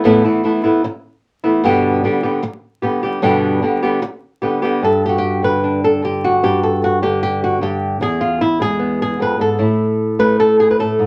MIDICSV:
0, 0, Header, 1, 3, 480
1, 0, Start_track
1, 0, Tempo, 397878
1, 49, Time_signature, 4, 2, 24, 8
1, 13348, End_track
2, 0, Start_track
2, 0, Title_t, "Nylon-string guitar"
2, 0, Program_c, 0, 24
2, 46, Note_on_c, 0, 40, 79
2, 52, Note_on_c, 0, 45, 73
2, 56, Note_on_c, 0, 52, 71
2, 61, Note_on_c, 0, 59, 85
2, 63, Note_on_c, 0, 57, 77
2, 67, Note_on_c, 0, 64, 78
2, 279, Note_off_c, 0, 40, 0
2, 280, Note_off_c, 0, 64, 0
2, 282, Note_off_c, 0, 45, 0
2, 283, Note_off_c, 0, 59, 0
2, 284, Note_off_c, 0, 52, 0
2, 287, Note_off_c, 0, 57, 0
2, 294, Note_on_c, 0, 64, 53
2, 297, Note_on_c, 0, 59, 49
2, 306, Note_on_c, 0, 57, 46
2, 313, Note_on_c, 0, 52, 50
2, 512, Note_off_c, 0, 52, 0
2, 522, Note_off_c, 0, 57, 0
2, 523, Note_off_c, 0, 64, 0
2, 525, Note_off_c, 0, 59, 0
2, 526, Note_on_c, 0, 52, 54
2, 537, Note_on_c, 0, 57, 57
2, 540, Note_on_c, 0, 59, 63
2, 543, Note_on_c, 0, 64, 59
2, 754, Note_off_c, 0, 64, 0
2, 759, Note_off_c, 0, 52, 0
2, 763, Note_off_c, 0, 59, 0
2, 765, Note_off_c, 0, 57, 0
2, 768, Note_on_c, 0, 64, 56
2, 777, Note_on_c, 0, 57, 46
2, 778, Note_on_c, 0, 59, 54
2, 789, Note_on_c, 0, 52, 50
2, 1001, Note_off_c, 0, 64, 0
2, 1002, Note_off_c, 0, 52, 0
2, 1005, Note_off_c, 0, 57, 0
2, 1005, Note_off_c, 0, 59, 0
2, 1733, Note_on_c, 0, 64, 55
2, 1739, Note_on_c, 0, 59, 53
2, 1747, Note_on_c, 0, 57, 47
2, 1751, Note_on_c, 0, 52, 45
2, 1964, Note_off_c, 0, 64, 0
2, 1968, Note_off_c, 0, 59, 0
2, 1971, Note_off_c, 0, 57, 0
2, 1973, Note_off_c, 0, 52, 0
2, 1973, Note_on_c, 0, 43, 82
2, 1979, Note_on_c, 0, 47, 68
2, 1983, Note_on_c, 0, 50, 81
2, 1989, Note_on_c, 0, 55, 85
2, 1994, Note_on_c, 0, 59, 87
2, 1994, Note_on_c, 0, 67, 84
2, 2443, Note_off_c, 0, 50, 0
2, 2445, Note_off_c, 0, 43, 0
2, 2448, Note_off_c, 0, 47, 0
2, 2453, Note_off_c, 0, 55, 0
2, 2456, Note_off_c, 0, 59, 0
2, 2456, Note_off_c, 0, 67, 0
2, 2457, Note_on_c, 0, 50, 60
2, 2470, Note_on_c, 0, 55, 61
2, 2472, Note_on_c, 0, 59, 65
2, 2480, Note_on_c, 0, 67, 59
2, 2678, Note_off_c, 0, 59, 0
2, 2678, Note_off_c, 0, 67, 0
2, 2687, Note_off_c, 0, 50, 0
2, 2692, Note_on_c, 0, 59, 53
2, 2692, Note_on_c, 0, 67, 56
2, 2694, Note_off_c, 0, 55, 0
2, 2707, Note_on_c, 0, 55, 50
2, 2714, Note_on_c, 0, 50, 45
2, 2918, Note_off_c, 0, 50, 0
2, 2920, Note_off_c, 0, 55, 0
2, 2921, Note_off_c, 0, 59, 0
2, 2922, Note_off_c, 0, 67, 0
2, 3405, Note_on_c, 0, 67, 54
2, 3415, Note_on_c, 0, 59, 54
2, 3417, Note_on_c, 0, 55, 52
2, 3426, Note_on_c, 0, 50, 48
2, 3639, Note_off_c, 0, 67, 0
2, 3647, Note_off_c, 0, 59, 0
2, 3649, Note_off_c, 0, 55, 0
2, 3653, Note_off_c, 0, 50, 0
2, 3653, Note_on_c, 0, 67, 57
2, 3661, Note_on_c, 0, 59, 50
2, 3671, Note_on_c, 0, 55, 47
2, 3680, Note_on_c, 0, 50, 45
2, 3878, Note_off_c, 0, 50, 0
2, 3883, Note_off_c, 0, 55, 0
2, 3885, Note_off_c, 0, 59, 0
2, 3886, Note_on_c, 0, 43, 81
2, 3887, Note_off_c, 0, 67, 0
2, 3892, Note_on_c, 0, 47, 78
2, 3893, Note_on_c, 0, 50, 79
2, 3897, Note_on_c, 0, 55, 79
2, 3899, Note_on_c, 0, 59, 77
2, 3905, Note_on_c, 0, 67, 77
2, 4354, Note_off_c, 0, 50, 0
2, 4359, Note_off_c, 0, 55, 0
2, 4364, Note_off_c, 0, 43, 0
2, 4367, Note_off_c, 0, 47, 0
2, 4368, Note_off_c, 0, 59, 0
2, 4368, Note_on_c, 0, 50, 54
2, 4373, Note_off_c, 0, 67, 0
2, 4373, Note_on_c, 0, 55, 56
2, 4382, Note_on_c, 0, 59, 61
2, 4389, Note_on_c, 0, 67, 58
2, 4600, Note_off_c, 0, 67, 0
2, 4604, Note_off_c, 0, 59, 0
2, 4605, Note_off_c, 0, 50, 0
2, 4608, Note_off_c, 0, 55, 0
2, 4614, Note_on_c, 0, 67, 54
2, 4618, Note_on_c, 0, 59, 56
2, 4630, Note_on_c, 0, 55, 50
2, 4634, Note_on_c, 0, 50, 48
2, 4841, Note_off_c, 0, 59, 0
2, 4842, Note_off_c, 0, 50, 0
2, 4844, Note_off_c, 0, 55, 0
2, 4844, Note_off_c, 0, 67, 0
2, 5330, Note_on_c, 0, 67, 55
2, 5340, Note_on_c, 0, 55, 45
2, 5341, Note_on_c, 0, 59, 50
2, 5348, Note_on_c, 0, 50, 44
2, 5559, Note_off_c, 0, 67, 0
2, 5565, Note_off_c, 0, 59, 0
2, 5572, Note_off_c, 0, 55, 0
2, 5574, Note_on_c, 0, 67, 57
2, 5576, Note_off_c, 0, 50, 0
2, 5579, Note_on_c, 0, 59, 53
2, 5592, Note_on_c, 0, 55, 46
2, 5598, Note_on_c, 0, 50, 45
2, 5809, Note_off_c, 0, 67, 0
2, 5812, Note_off_c, 0, 59, 0
2, 5818, Note_off_c, 0, 55, 0
2, 5820, Note_on_c, 0, 43, 74
2, 5821, Note_off_c, 0, 50, 0
2, 5844, Note_on_c, 0, 69, 87
2, 6073, Note_off_c, 0, 69, 0
2, 6099, Note_on_c, 0, 67, 88
2, 6141, Note_on_c, 0, 66, 76
2, 6237, Note_off_c, 0, 67, 0
2, 6252, Note_on_c, 0, 67, 85
2, 6545, Note_on_c, 0, 50, 59
2, 6554, Note_off_c, 0, 67, 0
2, 6566, Note_on_c, 0, 71, 92
2, 6708, Note_off_c, 0, 66, 0
2, 6801, Note_on_c, 0, 62, 47
2, 7035, Note_off_c, 0, 71, 0
2, 7049, Note_on_c, 0, 69, 82
2, 7252, Note_off_c, 0, 50, 0
2, 7267, Note_on_c, 0, 50, 61
2, 7276, Note_off_c, 0, 69, 0
2, 7295, Note_on_c, 0, 67, 82
2, 7513, Note_off_c, 0, 62, 0
2, 7532, Note_on_c, 0, 66, 90
2, 7713, Note_off_c, 0, 43, 0
2, 7716, Note_off_c, 0, 50, 0
2, 7751, Note_off_c, 0, 67, 0
2, 7760, Note_on_c, 0, 43, 73
2, 7766, Note_on_c, 0, 67, 93
2, 7995, Note_off_c, 0, 67, 0
2, 8002, Note_on_c, 0, 69, 87
2, 8233, Note_off_c, 0, 69, 0
2, 8238, Note_off_c, 0, 66, 0
2, 8251, Note_on_c, 0, 66, 85
2, 8472, Note_on_c, 0, 50, 62
2, 8474, Note_off_c, 0, 66, 0
2, 8478, Note_on_c, 0, 67, 83
2, 8705, Note_off_c, 0, 67, 0
2, 8719, Note_on_c, 0, 67, 100
2, 8951, Note_off_c, 0, 67, 0
2, 8972, Note_on_c, 0, 66, 85
2, 9171, Note_off_c, 0, 43, 0
2, 9186, Note_on_c, 0, 43, 63
2, 9196, Note_off_c, 0, 66, 0
2, 9201, Note_on_c, 0, 67, 83
2, 9635, Note_off_c, 0, 43, 0
2, 9662, Note_on_c, 0, 40, 80
2, 9666, Note_off_c, 0, 50, 0
2, 9671, Note_off_c, 0, 67, 0
2, 9681, Note_on_c, 0, 68, 103
2, 9902, Note_on_c, 0, 65, 93
2, 10141, Note_off_c, 0, 65, 0
2, 10143, Note_off_c, 0, 68, 0
2, 10148, Note_on_c, 0, 64, 93
2, 10374, Note_on_c, 0, 56, 66
2, 10384, Note_off_c, 0, 64, 0
2, 10396, Note_on_c, 0, 68, 98
2, 10607, Note_on_c, 0, 59, 49
2, 10867, Note_off_c, 0, 68, 0
2, 10882, Note_on_c, 0, 68, 88
2, 11095, Note_off_c, 0, 40, 0
2, 11100, Note_on_c, 0, 41, 62
2, 11110, Note_off_c, 0, 68, 0
2, 11123, Note_on_c, 0, 71, 93
2, 11325, Note_off_c, 0, 41, 0
2, 11330, Note_on_c, 0, 44, 61
2, 11349, Note_off_c, 0, 71, 0
2, 11354, Note_on_c, 0, 69, 95
2, 11543, Note_off_c, 0, 59, 0
2, 11546, Note_off_c, 0, 56, 0
2, 11566, Note_on_c, 0, 45, 77
2, 11571, Note_on_c, 0, 64, 51
2, 11574, Note_off_c, 0, 44, 0
2, 12295, Note_off_c, 0, 69, 0
2, 12295, Note_on_c, 0, 57, 62
2, 12300, Note_on_c, 0, 71, 97
2, 12538, Note_off_c, 0, 71, 0
2, 12543, Note_on_c, 0, 69, 101
2, 12779, Note_off_c, 0, 69, 0
2, 12786, Note_on_c, 0, 68, 88
2, 12911, Note_off_c, 0, 68, 0
2, 12916, Note_on_c, 0, 71, 68
2, 13005, Note_off_c, 0, 45, 0
2, 13007, Note_off_c, 0, 71, 0
2, 13019, Note_on_c, 0, 45, 63
2, 13029, Note_on_c, 0, 69, 88
2, 13256, Note_off_c, 0, 45, 0
2, 13258, Note_on_c, 0, 44, 63
2, 13348, Note_off_c, 0, 44, 0
2, 13348, Note_off_c, 0, 57, 0
2, 13348, Note_off_c, 0, 64, 0
2, 13348, Note_off_c, 0, 69, 0
2, 13348, End_track
3, 0, Start_track
3, 0, Title_t, "Muted nylon-string guitar strokes"
3, 1016, Note_on_c, 9, 29, 63
3, 1137, Note_off_c, 9, 29, 0
3, 2924, Note_on_c, 9, 29, 63
3, 3045, Note_off_c, 9, 29, 0
3, 4848, Note_on_c, 9, 29, 66
3, 4968, Note_off_c, 9, 29, 0
3, 13348, End_track
0, 0, End_of_file